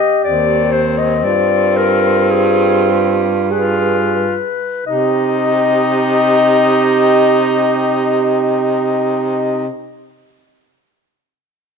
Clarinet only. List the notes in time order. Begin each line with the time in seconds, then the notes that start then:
Already playing: D#5
0.24 D5
0.72 C5
0.98 D#5
1.24 D5
1.77 A#4
2.31 G#4
2.91 G4
3.51 B4
4.87 D#5